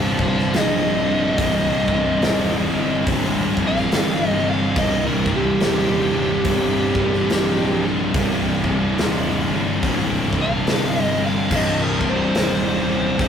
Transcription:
0.00 0.50 G1 loud
0.00 0.19 C2 medium
0.00 1.37 C2 loud
0.00 0.19 G2 loud
0.00 1.36 G2 loud
0.00 0.20 C3 loud
0.00 1.41 C3 loud
0.00 0.26 C5 medium
0.00 0.27 F5 medium
0.19 0.54 C2 medium
0.19 0.53 G2 medium
0.19 0.55 C3 medium
0.19 kick medium
0.28 0.53 C5 medium
0.28 0.55 F5 medium
0.38 snare soft
0.53 1.34 A#1 loud
0.53 1.04 C2 loud
0.53 1.04 G2 loud
0.53 1.05 C3 loud
0.53 snare loud
0.53 open hi-hat medium
0.58 3.05 D#5 loud
1.05 1.38 C2 medium
1.05 1.38 G2 medium
1.05 1.40 C3 medium
1.38 2.19 C1 loud
1.38 1.88 C2 loud
1.38 1.88 G2 loud
1.38 1.89 C3 loud
1.38 kick loud
1.38 open hi-hat medium
1.88 2.22 C2 medium
1.88 2.22 G2 medium
1.88 2.23 C3 medium
1.88 kick medium
2.22 2.69 D#1 medium
2.22 2.72 C2 loud
2.22 2.72 G2 loud
2.22 2.73 C3 loud
2.22 snare loud
2.22 open hi-hat medium
2.72 3.04 G1 medium
2.72 3.07 C2 loud
2.72 3.07 G2 loud
2.72 3.08 C3 loud
3.07 3.53 G#1 loud
3.07 3.56 C2 loud
3.07 3.56 G2 loud
3.07 3.57 C3 loud
3.07 kick loud
3.07 open hi-hat medium
3.57 3.88 A#1 loud
3.57 3.91 C2 medium
3.57 3.91 G2 loud
3.57 3.92 C3 loud
3.57 kick medium
3.67 4.28 F5 loud
3.76 snare soft
3.91 4.72 G1 loud
3.91 4.41 C2 loud
3.91 4.41 G2 loud
3.91 4.42 C3 loud
3.91 snare loud
3.91 open hi-hat medium
4.28 4.47 D#5 loud
4.42 4.76 C2 medium
4.42 4.76 G2 medium
4.42 4.77 C3 loud
4.50 4.77 F5 medium
4.76 5.57 C1 loud
4.76 5.26 C2 loud
4.76 5.26 G2 loud
4.76 5.27 C3 loud
4.76 5.05 D#5 medium
4.76 kick loud
4.76 open hi-hat medium
5.06 5.33 A#4 loud
5.26 5.61 C2 medium
5.26 5.61 G2 medium
5.26 5.62 C3 loud
5.26 kick medium
5.36 7.84 G4 loud
5.60 6.42 D#1 medium
5.60 6.12 C2 loud
5.60 6.11 G2 loud
5.60 6.12 C3 loud
5.60 snare loud
5.60 open hi-hat medium
6.12 6.46 C2 loud
6.12 6.45 G2 loud
6.12 6.47 C3 loud
6.44 7.26 G1 loud
6.44 6.96 C2 loud
6.44 6.96 G2 medium
6.44 6.97 C3 medium
6.44 kick loud
6.44 open hi-hat medium
6.95 7.29 C2 medium
6.95 7.29 G2 loud
6.95 7.31 C3 loud
6.95 kick medium
7.13 snare soft
7.30 8.10 A#1 loud
7.30 7.80 G2 loud
7.30 7.81 C3 loud
7.30 snare loud
7.30 open hi-hat medium
7.80 8.14 C2 medium
7.80 8.14 G2 loud
7.80 8.16 C3 medium
8.14 8.95 C1 loud
8.14 8.64 C2 loud
8.14 8.64 G2 loud
8.14 8.65 C3 loud
8.14 kick loud
8.14 open hi-hat medium
8.64 8.99 C2 medium
8.64 8.99 G2 loud
8.64 9.00 C3 loud
8.64 kick medium
8.98 9.45 D#1 medium
8.98 9.49 C2 loud
8.98 9.48 G2 loud
8.98 9.50 C3 loud
8.98 snare loud
8.98 open hi-hat medium
9.49 9.80 G1 medium
9.49 9.84 C2 medium
9.49 9.83 G2 loud
9.49 9.85 C3 loud
9.83 10.29 G#1 medium
9.83 10.33 C2 medium
9.83 10.33 G2 loud
9.83 10.34 C3 loud
9.83 kick loud
9.83 open hi-hat medium
10.33 10.64 A#1 medium
10.33 10.67 C2 medium
10.33 10.67 G2 medium
10.33 10.68 C3 loud
10.33 kick medium
10.42 11.02 F5 loud
10.67 11.47 G1 loud
10.67 11.17 C2 medium
10.67 11.16 G2 medium
10.67 11.18 C3 loud
10.67 snare loud
10.67 open hi-hat medium
11.02 11.22 D#5 loud
11.17 11.51 C2 medium
11.17 11.51 G2 medium
11.17 11.52 C3 loud
11.26 11.52 F5 loud
11.51 12.32 C1 loud
11.51 12.00 C2 loud
11.51 12.01 G2 loud
11.51 12.02 C3 loud
11.51 kick loud
11.51 crash loud
11.55 11.81 D#5 medium
11.82 12.08 A#4 loud
12.01 12.35 C2 medium
12.01 12.35 G2 medium
12.01 12.36 C3 loud
12.01 kick medium
12.11 13.28 C5 loud
12.35 13.16 D#1 loud
12.35 12.84 C2 loud
12.35 12.84 G2 medium
12.35 12.85 C3 loud
12.35 snare loud
12.35 open hi-hat medium
12.85 13.19 C2 medium
12.85 13.18 G2 medium
12.85 13.20 C3 medium
13.19 13.28 G1 loud
13.19 13.28 C2 medium
13.19 13.28 G2 medium
13.19 13.28 C3 medium
13.19 kick loud
13.19 open hi-hat medium

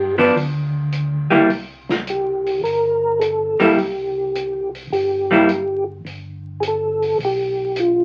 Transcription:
0.00 0.31 G2 medium
0.00 0.15 G4 medium
0.18 0.34 F3 soft
0.18 0.34 B3 medium
0.18 0.34 D4 medium
0.18 open hi-hat soft
0.36 1.28 D2 medium
0.36 open hi-hat soft
0.92 closed hi-hat soft
1.30 1.41 D2 soft
1.30 1.47 G3 medium
1.30 1.47 A#3 medium
1.30 1.48 E4 medium
1.49 2.59 C2 medium
1.49 open hi-hat soft
1.89 snare soft
2.07 2.61 G4 medium
2.07 closed hi-hat soft
2.46 open hi-hat soft
2.62 3.55 G1 medium
2.62 3.22 A#4 medium
2.62 open hi-hat soft
3.20 3.73 A4 medium
3.20 closed hi-hat soft
3.60 3.69 G1 soft
3.60 3.75 G3 medium
3.60 3.76 A#3 medium
3.60 3.76 E4 medium
3.60 open hi-hat soft
3.76 4.87 C2 medium
3.76 4.69 G4 medium
3.76 open hi-hat soft
4.35 closed hi-hat medium
4.75 open hi-hat soft
4.90 6.01 G1 medium
4.90 5.84 G4 medium
4.90 open hi-hat soft
5.31 5.47 G3 medium
5.31 5.47 A#3 medium
5.31 5.47 E4 medium
5.49 closed hi-hat soft
6.05 7.15 G1 medium
6.05 open hi-hat soft
6.60 6.63 G#4 medium
6.60 closed hi-hat medium
6.68 7.18 A4 medium
7.02 open hi-hat soft
7.19 8.04 B1 medium
7.19 open hi-hat soft
7.25 7.80 G4 medium
7.76 8.04 F4 medium
7.76 closed hi-hat medium

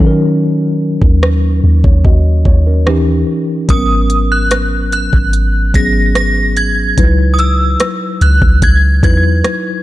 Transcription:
0.00 0.98 D#3 loud
0.00 1.48 F#3 medium
0.00 1.48 C#4 medium
0.00 1.48 D#4 medium
0.00 0.06 A4 medium
0.07 1.52 A#4 medium
1.02 1.61 D#2 medium
1.02 kick medium
1.23 cross-stick loud
1.63 1.83 D#2 loud
1.84 2.04 D#2 loud
1.84 2.04 C#5 medium
1.84 kick medium
2.05 2.44 D#2 loud
2.05 2.44 F#4 medium
2.05 2.44 D#5 medium
2.05 kick medium
2.45 3.24 D#2 medium
2.45 2.65 C#5 medium
2.45 kick medium
2.67 2.86 C#4 soft
2.67 3.06 A#4 medium
2.86 3.61 E3 medium
2.86 3.61 C#4 medium
2.86 3.61 D#4 medium
2.86 3.62 G4 medium
2.86 cross-stick loud
3.68 5.09 G#1 loud
3.68 5.17 F#3 medium
3.68 3.75 A#3 medium
3.68 5.18 C#4 medium
3.68 5.18 A#4 medium
3.68 4.27 D#6 medium
3.68 kick loud
3.68 closed hi-hat medium
3.76 5.21 B3 medium
4.10 closed hi-hat medium
4.32 4.92 F#6 medium
4.51 cross-stick loud
4.51 closed hi-hat medium
4.92 5.77 F#6 medium
4.92 closed hi-hat medium
5.13 5.72 G#1 loud
5.13 kick medium
5.33 closed hi-hat medium
5.74 6.94 G#1 loud
5.74 6.86 F#3 medium
5.74 6.86 B3 medium
5.74 6.86 C#4 medium
5.74 6.87 G#4 medium
5.74 6.15 A#6 loud
5.74 kick medium
5.74 closed hi-hat medium
6.15 6.58 A#6 loud
6.15 cross-stick loud
6.15 closed hi-hat medium
6.57 7.34 G#6 loud
6.57 closed hi-hat medium
6.98 7.77 C#2 loud
6.98 8.46 F#3 medium
6.98 8.47 D#4 medium
6.98 8.47 E4 medium
6.98 8.47 B4 medium
6.98 kick loud
6.98 closed hi-hat medium
7.34 7.40 D#6 medium
7.39 8.17 E6 medium
7.39 closed hi-hat medium
7.80 cross-stick loud
7.80 closed hi-hat medium
8.21 8.41 C#2 loud
8.21 8.64 F#6 medium
8.21 closed hi-hat medium
8.42 8.61 C#2 loud
8.42 kick medium
8.62 9.02 C#2 loud
8.62 8.78 G#6 medium
8.62 kick medium
8.62 closed hi-hat medium
9.03 9.43 E2 loud
9.03 9.83 F#3 medium
9.03 9.83 D#4 medium
9.03 9.83 E4 medium
9.03 9.83 B4 medium
9.03 9.82 G#6 medium
9.03 kick medium
9.03 closed hi-hat medium
9.44 cross-stick loud
9.44 closed hi-hat medium

